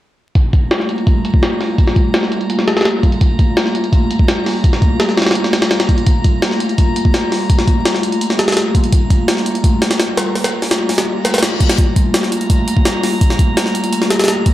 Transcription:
0.35 G3 A3 A#3 F4 A#5, kick, closed hi-hat
0.53 kick, closed hi-hat
0.71 snare, closed hi-hat
0.80 snare
0.89 closed hi-hat
0.98 closed hi-hat
1.07 kick, closed hi-hat
1.25 closed hi-hat
1.34 kick
1.43 snare, closed hi-hat
1.61 snare, open hi-hat
1.78 G3 A3 A#3 F4, kick, closed hi-hat
1.87 snare
1.96 kick, closed hi-hat
2.14 snare, closed hi-hat
2.23 snare
2.32 closed hi-hat
2.41 closed hi-hat
2.50 closed hi-hat
2.59 snare
2.68 snare, closed hi-hat
2.77 snare, closed hi-hat
2.81 snare, closed hi-hat
2.85 snare, closed hi-hat
3.03 kick, closed hi-hat
3.12 closed hi-hat
3.21 G3 A3 A#3 F4, kick, closed hi-hat
3.39 kick, closed hi-hat
3.57 snare, closed hi-hat
3.66 snare
3.75 closed hi-hat
3.84 closed hi-hat
3.93 kick, closed hi-hat
4.11 closed hi-hat
4.19 kick
4.28 snare, closed hi-hat
4.46 snare, open hi-hat
4.64 G3 A3 A#3 F4, kick, closed hi-hat
4.73 snare
4.82 kick, closed hi-hat
5.00 snare, closed hi-hat
5.09 snare
5.17 snare, closed hi-hat
5.22 snare, closed hi-hat
5.26 snare, closed hi-hat
5.31 snare, closed hi-hat
5.35 closed hi-hat
5.44 snare
5.53 snare, closed hi-hat
5.62 snare, closed hi-hat
5.71 snare, closed hi-hat
5.80 snare, closed hi-hat
5.89 kick, closed hi-hat
5.98 closed hi-hat
6.07 G3 A3 A#3 F4, kick, closed hi-hat
6.24 kick, closed hi-hat
6.42 snare, closed hi-hat
6.51 snare
6.60 closed hi-hat
6.69 closed hi-hat
6.78 kick, closed hi-hat
6.96 closed hi-hat
7.05 kick
7.14 snare, closed hi-hat
7.32 snare, open hi-hat
7.49 G3 A3 A#3 F4, kick, closed hi-hat
7.59 snare
7.68 kick, closed hi-hat
7.85 snare, closed hi-hat
7.95 snare
8.03 closed hi-hat
8.12 closed hi-hat
8.21 closed hi-hat
8.30 snare
8.39 snare, closed hi-hat
8.48 snare, closed hi-hat
8.52 snare, closed hi-hat
8.57 snare, closed hi-hat
8.75 kick, closed hi-hat
8.84 closed hi-hat
8.92 G3 A3 A#3 F4, kick, closed hi-hat
9.10 kick, closed hi-hat
9.28 snare, closed hi-hat
9.37 snare
9.46 closed hi-hat
9.55 closed hi-hat
9.64 kick, closed hi-hat
9.82 snare, closed hi-hat
9.91 snare, closed hi-hat
10.00 snare, closed hi-hat
10.17 snare, closed hi-hat
10.35 G3 A3 A#3 F4, snare, open hi-hat
10.44 snare, closed hi-hat
10.62 snare, open hi-hat
10.71 snare, closed hi-hat
10.89 snare, open hi-hat
10.98 snare, closed hi-hat
11.07 reverse cymbal
11.25 snare, closed hi-hat
11.34 snare, closed hi-hat
11.38 snare, closed hi-hat
11.43 snare, closed hi-hat
11.60 kick, closed hi-hat
11.70 snare, closed hi-hat
11.78 G3 A3 A#3 F4 A#5, kick, closed hi-hat
11.96 kick, closed hi-hat
12.14 snare, closed hi-hat
12.23 snare
12.32 closed hi-hat
12.41 closed hi-hat
12.50 kick, closed hi-hat
12.68 closed hi-hat
12.77 kick
12.85 snare, closed hi-hat
13.03 snare, open hi-hat
13.21 G3 A3 A#3 F4, kick, closed hi-hat
13.30 snare
13.39 kick, closed hi-hat
13.57 snare, closed hi-hat
13.66 snare
13.75 closed hi-hat
13.84 closed hi-hat
13.93 closed hi-hat
14.02 snare
14.10 snare, closed hi-hat
14.19 snare, closed hi-hat
14.24 snare, closed hi-hat
14.28 snare, closed hi-hat
14.46 kick, closed hi-hat

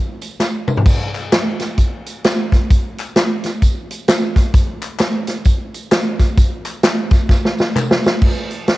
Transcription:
0.21 closed hi-hat, tambourine
0.40 snare, clap, tambourine
0.68 mid tom, tambourine
0.77 floor tom
0.86 kick, tambourine, crash
1.14 clap, closed hi-hat, tambourine
1.32 snare, clap, closed hi-hat, tambourine
1.60 snare, closed hi-hat, tambourine
1.78 kick, closed hi-hat, tambourine
2.06 closed hi-hat, tambourine
2.24 snare, clap, closed hi-hat, tambourine
2.52 kick, snare, closed hi-hat, tambourine
2.70 kick, closed hi-hat, tambourine
2.98 clap, closed hi-hat, tambourine
3.16 snare, clap, closed hi-hat, tambourine
3.44 snare, closed hi-hat, tambourine
3.62 kick, closed hi-hat, tambourine
3.90 closed hi-hat, tambourine
4.08 snare, clap, closed hi-hat, tambourine
4.36 kick, snare, closed hi-hat, tambourine
4.54 kick, closed hi-hat, tambourine
4.82 clap, closed hi-hat, tambourine
4.99 snare, clap, closed hi-hat, tambourine
5.27 snare, closed hi-hat, tambourine
5.45 kick, closed hi-hat, tambourine
5.74 closed hi-hat, tambourine
5.91 snare, clap, closed hi-hat, tambourine
6.19 kick, snare, closed hi-hat, tambourine
6.37 kick, closed hi-hat, tambourine
6.65 clap, closed hi-hat, tambourine
6.83 snare, clap, closed hi-hat, tambourine
7.11 kick, snare, closed hi-hat, tambourine
7.29 kick, snare, tambourine
7.45 snare
7.59 snare, tambourine
7.76 clap, mid tom, tambourine
7.91 snare
8.04 snare, tambourine
8.22 kick, crash
8.51 closed hi-hat
8.68 snare, closed hi-hat

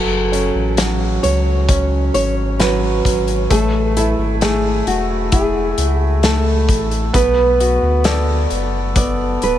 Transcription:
Already playing: F#1 F#3 A4
0.32 C#4, closed hi-hat
0.55 A1
0.77 F#3, snare, closed hi-hat
1.23 C#2 C#5, closed hi-hat
1.68 C#4, kick, closed hi-hat
2.14 G#1 C#5, closed hi-hat
2.59 F#3 B4, snare, closed hi-hat
3.05 G#1, kick, closed hi-hat
3.28 closed hi-hat
3.50 A1 A3 A4, kick, closed hi-hat
3.97 E4 A4, closed hi-hat
4.18 G#1
4.41 A3 G#4, snare, closed hi-hat
4.87 E1 F#4, closed hi-hat
5.32 E4 G#4, kick, closed hi-hat
5.78 C#2, closed hi-hat
5.99 F#4
6.23 A3 A4, snare, closed hi-hat
6.69 A1, kick, closed hi-hat
6.91 closed hi-hat
7.13 B1 B3 B4, kick, closed hi-hat
7.60 F#4, closed hi-hat
7.82 D2
8.04 A4 D5, snare, closed hi-hat
8.50 F#1, closed hi-hat
8.96 B3 D5, kick, closed hi-hat
9.42 D1 B4, closed hi-hat

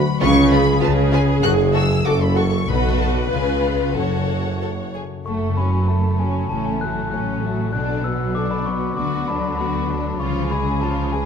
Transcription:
Already playing: D3 F#3 B3 D4 F#4 B4 D5 B5
0.02 F#4
0.21 C#2 C#3 F4 G#4 B4 C#6
0.43 C#4
0.51 F4 B4 B5
0.63 G#3
0.82 C#2 C#3 F4 B4 A5
1.03 G#4
1.12 F4 B4 G#5
1.24 B4
1.42 F#1 F#2 F#4 A4 F#6
1.65 C#3
1.73 F#4 A4 E6
1.85 A3
2.05 F#1 F#2 F#4 A4 D6
2.22 B5
2.27 A4
2.36 F#4 A4 C#6
2.48 C#5
2.68 B1 B2 F#4 A4 B4 B5
2.90 A3
3.01 A5
3.12 F#4 D5
3.30 C#2 C#3 F4 B4 G#5
3.54 B3
3.64 F5
3.75 F4 C#5
3.90 G#5
3.96 F#1 F#2 F#4 A4 C#5 F#5
4.18 C#3
4.41 A3
4.62 F#4 A4
4.84 A4
4.95 G#4
5.06 C#5
5.26 F#1 F#2 A3 A4 C#6
5.48 C#3
5.57 F#3 C#4 F#4 B5
5.69 A3
5.88 A3 F#4 A4 A5
6.10 A4
6.20 F#3 C#4 F#4 G#5
6.31 C#5
6.49 A1 A2 A3 C#4 A4 A5
6.65 G#5
6.72 A3
6.81 F#3 A3 F#4 F#6
6.93 F#3
7.11 A3 C#4 F#4 F#6
7.16 A4
7.34 C#5
7.45 F#3 A3 F#4
7.55 F#4
7.73 B1 B2 D3 D4 D5 F#6
7.96 B3
8.04 F#3 B3 B4 E6
8.16 F#3
8.35 D3 D4 F#4 D5 D6
8.51 B5
8.57 D5
8.66 F#3 B3 B4 C#6
8.78 F#4
8.97 D2 D3 B3 F#4 D5 D6
9.20 D4
9.28 F#3 D4 B4 B5
9.40 F#3
9.58 B3 F#4 D5 B5
9.81 B4
9.91 F#3 D4 B4
10.01 F#4
10.20 C#2 C#3 F3 F4 C#5 C#6
10.42 C#4
10.51 G#3 G#4 B4 B5
10.62 G#3
10.81 F3 F4 C#5 A5
11.02 G#4
11.12 G#3 G#4 B4 G#5

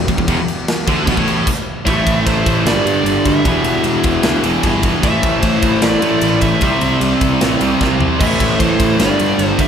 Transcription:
Already playing: E3 B3 F#4 G4
0.08 E1 E2, kick, crash
0.18 E1 E2, kick
0.28 E1 E2, kick, crash
0.48 crash
0.68 snare, crash
0.88 D2 D3, kick, crash
1.07 B1 B2, kick, crash
1.17 A1 A2, kick
1.28 crash
1.47 kick, crash
1.85 A1 A2 E3 A3 E4 C5 E5, kick, ride
1.89 A3
2.07 A1, kick, ride
2.26 A1 C5, kick, ride
2.46 A1, kick, ride
2.65 G1 G2 D3 G3 D4 A4 D5, snare, ride
2.85 G2, ride
3.04 G1, ride
3.25 D2 E5, kick, ride
3.45 E1 E2 B2 E3 B3 F#4 G4, kick, ride
3.64 E1, ride
3.84 E1, ride
4.04 E1, kick, ride
4.23 D2, snare, ride
4.44 E1 E2 B2 E3, ride
4.63 G1 E2 B2 E3, kick, ride
4.83 kick, ride
5.02 A1 A2 E3 A3 E4 A4 C5 E5, kick, ride
5.23 A1, kick, ride
5.41 A1 C5, kick, ride
5.62 A1, kick, ride
5.82 A1 D5, snare, ride
6.02 A2 E3 A3, ride
6.21 A1 A2 E3 A3, ride
6.41 A1 E5, kick, ride
6.61 C2 C3 G3 C4 G4 D5 E5, kick, ride
6.81 C2, ride
7.01 C2, ride
7.21 C2, kick, ride
7.41 A1, snare, ride
7.60 C2 C3 G3 C4, ride
7.81 C2 C3 G3 C4, kick, snare
8.01 floor tom
8.20 A1 A2 E3 A3 E4 C5 E5, kick, crash
8.40 A1, kick, ride
8.59 A1 C5, kick, ride
8.80 A1, kick, ride
8.99 G1 G2 D3 G3 D4 A4 D5, snare, ride
9.19 G2, ride
9.39 G1, ride
9.47 C5
9.59 G1 E5, kick, ride

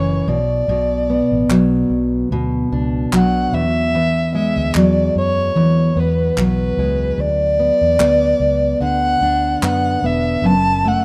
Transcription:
Already playing: F#1 F#2 E3 A3 C#4 C#5
0.27 B1 B2 D5
0.68 B1 B2
1.10 B3
1.31 A1
1.49 B1 F#3, clap
1.90 B1
2.31 D2 B2
2.72 C#2 D4
3.12 B1 F#3 F#5, clap
3.53 E2 E5
3.95 E2
4.35 G#3 E5
4.56 D2
4.74 E2 F#3 D5, clap
5.16 F#2 C#5
5.56 E2 E3
5.96 E2 B3 B4
6.37 B1 F#3 B4, clap
6.77 C#2 G#3
7.18 D2 D5
7.59 B3
7.81 E2
7.99 D2 B3, clap
8.40 C#2
8.80 D2 D3 F#5
9.21 D2 D4
9.62 F#2 B3 F#5, clap
10.02 E1 B3 E5
10.42 F#1 F#2
10.46 A5
10.85 A3 F#5

